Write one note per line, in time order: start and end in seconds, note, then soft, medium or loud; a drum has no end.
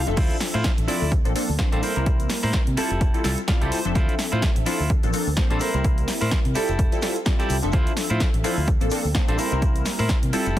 0.00 0.16 F5 medium
0.06 0.15 F1 medium
0.06 0.85 F3 medium
0.06 0.86 C4 medium
0.06 0.86 D4 medium
0.06 0.86 A4 medium
0.06 0.86 E5 medium
0.06 closed hi-hat soft
0.06 shaker soft
0.16 0.28 D2 medium
0.16 0.36 E4 loud
0.16 0.36 F4 loud
0.16 0.36 C5 loud
0.16 kick loud
0.16 closed hi-hat medium
0.16 crash medium
0.16 shaker soft
0.30 closed hi-hat medium
0.30 shaker soft
0.40 snare medium
0.40 open hi-hat loud
0.40 shaker medium
0.54 0.62 A2 medium
0.54 0.71 E4 medium
0.54 0.71 F4 medium
0.54 0.72 C5 medium
0.54 closed hi-hat soft
0.54 shaker soft
0.64 kick loud
0.64 snare loud
0.64 closed hi-hat medium
0.64 shaker soft
0.78 0.86 A1 medium
0.78 closed hi-hat medium
0.88 1.03 F3 medium
0.88 1.03 C4 medium
0.88 1.03 D4 medium
0.88 1.12 E4 medium
0.88 1.03 E4 medium
0.88 1.12 F4 medium
0.88 1.03 A4 loud
0.88 1.12 D5 medium
0.88 open hi-hat loud
0.88 shaker medium
1.02 1.19 D2 medium
1.02 shaker soft
1.12 kick loud
1.12 closed hi-hat medium
1.12 shaker medium
1.25 1.33 A1 medium
1.25 1.33 F3 medium
1.25 1.33 A#3 medium
1.25 1.33 C4 medium
1.25 1.33 D4 medium
1.25 1.33 A4 medium
1.25 closed hi-hat medium
1.25 shaker soft
1.35 1.51 F3 medium
1.35 1.51 A#3 medium
1.35 1.51 C4 medium
1.35 1.51 D4 medium
1.35 1.51 A4 medium
1.35 open hi-hat loud
1.35 shaker medium
1.49 1.57 D2 medium
1.49 shaker soft
1.59 1.69 F3 medium
1.59 1.69 A#3 medium
1.59 1.69 C4 medium
1.59 1.69 D4 medium
1.59 1.70 C5 medium
1.59 muted clean electric guitar stroke medium
1.59 kick loud
1.59 snare loud
1.59 closed hi-hat medium
1.59 shaker medium
1.72 1.81 A1 loud
1.72 1.93 G3 medium
1.72 1.93 A#3 medium
1.72 1.93 C4 medium
1.72 1.83 D4 loud
1.72 1.93 E4 medium
1.72 1.82 A4 loud
1.72 1.93 A4 medium
1.72 1.82 C5 loud
1.72 closed hi-hat medium
1.82 2.30 E4 medium
1.82 2.30 A#4 medium
1.82 2.30 C5 medium
1.82 open hi-hat loud
1.82 shaker medium
1.96 2.27 C2 medium
1.96 2.75 G3 medium
1.96 2.75 A#3 medium
1.96 2.75 C4 medium
1.96 2.75 E4 medium
1.96 2.75 A#4 medium
1.96 closed hi-hat soft
1.96 shaker soft
2.06 kick loud
2.06 closed hi-hat medium
2.06 shaker medium
2.20 closed hi-hat medium
2.20 shaker soft
2.30 snare medium
2.30 open hi-hat loud
2.30 shaker loud
2.43 2.52 A2 medium
2.43 2.60 E4 medium
2.43 2.60 A#4 medium
2.43 2.61 C5 loud
2.43 open hi-hat medium
2.43 shaker soft
2.53 kick loud
2.53 snare loud
2.53 closed hi-hat medium
2.53 shaker medium
2.67 2.75 C3 medium
2.67 closed hi-hat medium
2.77 2.92 G3 medium
2.77 2.92 C4 medium
2.77 3.35 E4 medium
2.77 2.93 E4 medium
2.77 2.93 F4 medium
2.77 3.35 G4 medium
2.77 2.93 A4 loud
2.77 3.36 A4 loud
2.77 muted fingered electric bass stroke soft
2.77 open hi-hat loud
2.77 shaker medium
2.90 3.08 F1 medium
2.90 closed hi-hat soft
2.90 shaker soft
3.01 kick loud
3.01 closed hi-hat medium
3.01 shaker medium
3.14 3.22 G3 medium
3.14 3.22 C4 medium
3.14 3.22 E4 medium
3.14 3.22 F4 medium
3.14 3.22 A4 medium
3.14 closed hi-hat medium
3.14 shaker soft
3.24 3.35 C2 medium
3.24 3.39 G3 medium
3.24 3.40 C4 medium
3.24 3.40 E4 medium
3.24 3.40 F4 medium
3.24 3.40 A4 medium
3.24 snare medium
3.24 open hi-hat loud
3.24 shaker medium
3.38 closed hi-hat soft
3.38 shaker soft
3.48 3.58 G3 medium
3.48 3.58 C4 medium
3.48 3.58 E4 medium
3.48 3.58 F4 medium
3.48 3.59 D5 medium
3.48 3.70 F5 medium
3.48 muted clean electric guitar stroke medium
3.48 kick loud
3.48 snare loud
3.48 closed hi-hat medium
3.48 shaker medium
3.61 3.70 C2 medium
3.61 3.82 G3 medium
3.61 3.82 C4 medium
3.61 3.78 E4 loud
3.61 3.82 E4 medium
3.61 3.82 F4 medium
3.61 3.78 G4 loud
3.61 3.82 G4 medium
3.61 3.79 A4 loud
3.61 closed hi-hat medium
3.72 3.94 C5 medium
3.72 muted fingered electric bass stroke soft
3.72 open hi-hat loud
3.72 shaker loud
3.84 3.93 F1 medium
3.84 4.64 F3 medium
3.84 4.64 C4 medium
3.84 4.64 D4 medium
3.84 4.64 A4 medium
3.84 4.64 E5 medium
3.84 closed hi-hat soft
3.84 shaker soft
3.95 4.06 D2 loud
3.95 4.14 E4 loud
3.95 4.14 F4 loud
3.95 4.14 C5 loud
3.95 kick loud
3.95 closed hi-hat medium
3.95 shaker medium
4.08 closed hi-hat medium
4.08 shaker soft
4.19 snare medium
4.19 open hi-hat loud
4.19 shaker medium
4.32 4.40 A2 medium
4.32 4.49 E4 medium
4.32 4.49 F4 medium
4.32 4.50 C5 loud
4.32 closed hi-hat soft
4.32 shaker soft
4.42 kick loud
4.42 snare loud
4.42 closed hi-hat medium
4.42 shaker medium
4.56 4.64 A1 medium
4.56 closed hi-hat medium
4.66 4.81 F3 medium
4.66 4.81 C4 medium
4.66 4.81 D4 medium
4.66 4.90 E4 medium
4.66 4.82 E4 medium
4.66 4.90 F4 medium
4.66 4.82 A4 loud
4.66 4.90 C5 medium
4.66 open hi-hat loud
4.66 shaker medium
4.80 4.98 D2 medium
4.80 shaker soft
4.90 kick loud
4.90 closed hi-hat medium
4.90 shaker medium
5.03 5.11 A1 loud
5.03 5.11 F3 medium
5.03 5.11 A#3 medium
5.03 5.11 C4 medium
5.03 5.11 D4 medium
5.03 5.11 A4 medium
5.03 closed hi-hat medium
5.03 shaker soft
5.13 5.28 F3 medium
5.13 5.29 A#3 medium
5.13 5.29 C4 medium
5.13 5.29 D4 medium
5.13 5.29 A4 medium
5.13 open hi-hat loud
5.13 shaker medium
5.26 5.35 D2 medium
5.26 shaker soft
5.37 5.47 F3 medium
5.37 5.47 A#3 medium
5.37 5.47 C4 medium
5.37 5.48 D4 medium
5.37 5.48 C5 medium
5.37 muted clean electric guitar stroke medium
5.37 kick loud
5.37 snare loud
5.37 closed hi-hat medium
5.37 shaker medium
5.50 5.58 A1 loud
5.50 5.71 G3 medium
5.50 5.71 A#3 medium
5.50 5.71 C4 medium
5.50 5.61 D4 loud
5.50 5.71 E4 medium
5.50 5.61 A4 loud
5.50 5.71 A4 medium
5.50 5.60 C5 loud
5.50 closed hi-hat medium
5.60 6.08 E4 medium
5.60 6.08 A#4 medium
5.60 6.08 C5 medium
5.60 open hi-hat loud
5.60 shaker medium
5.74 6.04 C2 loud
5.74 6.53 G3 medium
5.74 6.53 A#3 medium
5.74 6.53 C4 medium
5.74 6.53 E4 medium
5.74 6.53 A#4 medium
5.74 closed hi-hat soft
5.74 shaker soft
5.84 kick loud
5.84 closed hi-hat medium
5.84 shaker soft
5.98 closed hi-hat soft
5.98 shaker soft
6.08 snare medium
6.08 open hi-hat loud
6.08 shaker medium
6.21 6.29 A2 medium
6.21 6.38 E4 medium
6.21 6.38 A#4 medium
6.21 6.39 C5 loud
6.21 open hi-hat medium
6.21 shaker soft
6.31 kick loud
6.31 snare loud
6.31 closed hi-hat medium
6.31 shaker medium
6.45 6.53 C3 medium
6.45 closed hi-hat medium
6.55 6.70 G3 medium
6.55 6.70 C4 medium
6.55 7.13 E4 medium
6.55 6.70 E4 medium
6.55 6.71 F4 medium
6.55 7.13 G4 medium
6.55 7.13 A4 loud
6.55 6.71 A4 loud
6.55 muted fingered electric bass stroke soft
6.55 open hi-hat loud
6.55 shaker medium
6.68 6.86 F1 medium
6.68 closed hi-hat soft
6.68 shaker soft
6.79 kick loud
6.79 closed hi-hat medium
6.79 shaker medium
6.92 7.00 G3 medium
6.92 7.00 C4 medium
6.92 7.00 E4 medium
6.92 7.00 F4 medium
6.92 7.00 A4 medium
6.92 closed hi-hat soft
6.92 shaker soft
7.02 7.17 G3 medium
7.02 7.18 C4 medium
7.02 7.18 E4 medium
7.02 7.18 F4 medium
7.02 7.18 A4 loud
7.02 snare medium
7.02 open hi-hat loud
7.02 shaker medium
7.16 closed hi-hat soft
7.16 shaker soft
7.25 7.36 G3 medium
7.25 7.36 C4 medium
7.25 7.36 E4 medium
7.25 7.36 F4 medium
7.25 7.37 D5 medium
7.25 muted clean electric guitar stroke medium
7.25 kick loud
7.25 snare loud
7.25 closed hi-hat medium
7.25 shaker soft
7.39 7.60 G3 medium
7.39 7.60 C4 medium
7.39 7.56 E4 loud
7.39 7.60 E4 medium
7.39 7.60 F4 medium
7.39 7.56 G4 loud
7.39 7.60 G4 medium
7.39 7.57 A4 loud
7.39 closed hi-hat soft
7.39 shaker soft
7.50 7.60 C2 medium
7.50 open hi-hat loud
7.50 shaker loud
7.62 7.71 F1 medium
7.62 8.41 F3 medium
7.62 8.42 C4 medium
7.62 8.42 D4 medium
7.62 8.42 A4 medium
7.62 8.42 E5 medium
7.62 closed hi-hat soft
7.62 shaker soft
7.72 7.84 D2 medium
7.72 7.92 E4 loud
7.72 7.92 F4 loud
7.72 7.92 C5 loud
7.72 kick loud
7.72 closed hi-hat medium
7.72 shaker soft
7.87 closed hi-hat soft
7.87 shaker soft
7.97 snare medium
7.97 open hi-hat loud
7.97 shaker medium
8.10 8.18 A2 medium
8.10 8.27 E4 medium
8.10 8.27 F4 medium
8.10 8.28 C5 loud
8.10 closed hi-hat soft
8.10 shaker soft
8.20 kick loud
8.20 snare loud
8.20 closed hi-hat medium
8.20 shaker medium
8.34 8.42 A1 medium
8.34 closed hi-hat medium
8.44 8.59 F3 medium
8.44 8.59 C4 medium
8.44 8.59 D4 medium
8.44 8.68 E4 medium
8.44 8.59 E4 medium
8.44 8.68 F4 medium
8.44 8.59 A4 loud
8.44 8.68 C5 medium
8.44 open hi-hat loud
8.44 shaker medium
8.57 8.75 D2 medium
8.57 shaker soft
8.68 kick loud
8.68 closed hi-hat medium
8.68 shaker medium
8.81 8.89 A1 medium
8.81 8.89 F3 medium
8.81 8.89 A#3 medium
8.81 8.89 C4 medium
8.81 8.89 D4 medium
8.81 8.89 A4 medium
8.81 closed hi-hat soft
8.81 shaker soft
8.90 9.06 F3 medium
8.90 9.07 A#3 medium
8.90 9.07 C4 medium
8.90 9.07 D4 medium
8.90 9.07 A4 loud
8.90 open hi-hat loud
8.90 shaker medium
9.04 9.13 D2 medium
9.04 shaker soft
9.15 9.25 F3 medium
9.15 9.25 A#3 medium
9.15 9.25 C4 medium
9.15 9.25 D4 medium
9.15 9.25 C5 medium
9.15 muted clean electric guitar stroke medium
9.15 kick loud
9.15 snare loud
9.15 closed hi-hat medium
9.15 shaker medium
9.28 9.36 A1 loud
9.28 9.49 G3 medium
9.28 9.49 A#3 medium
9.28 9.49 C4 medium
9.28 9.39 D4 loud
9.28 9.49 E4 medium
9.28 9.38 A4 loud
9.28 9.49 A4 medium
9.28 9.38 C5 loud
9.28 closed hi-hat medium
9.38 9.86 E4 medium
9.38 9.86 A#4 medium
9.38 9.86 C5 medium
9.38 open hi-hat loud
9.38 shaker medium
9.51 9.82 C2 loud
9.51 10.30 G3 medium
9.51 10.31 A#3 medium
9.51 10.31 C4 medium
9.51 10.31 E4 medium
9.51 10.31 A#4 medium
9.51 closed hi-hat soft
9.51 shaker soft
9.62 kick loud
9.62 closed hi-hat medium
9.62 shaker soft
9.76 closed hi-hat soft
9.76 shaker soft
9.85 snare medium
9.85 open hi-hat loud
9.85 shaker medium
9.99 10.07 A2 medium
9.99 10.16 E4 medium
9.99 10.16 A#4 medium
9.99 10.17 C5 medium
9.99 open hi-hat medium
9.99 shaker soft
10.09 kick loud
10.09 snare loud
10.09 closed hi-hat medium
10.09 shaker soft
10.23 10.31 C3 medium
10.23 closed hi-hat medium
10.33 10.48 G3 loud
10.33 10.48 C4 medium
10.33 10.59 E4 medium
10.33 10.48 E4 medium
10.33 10.48 F4 medium
10.33 10.59 G4 medium
10.33 10.49 A4 loud
10.33 10.59 A4 loud
10.33 muted fingered electric bass stroke soft
10.33 open hi-hat loud
10.33 shaker medium
10.46 10.59 F1 medium
10.46 closed hi-hat soft
10.46 shaker soft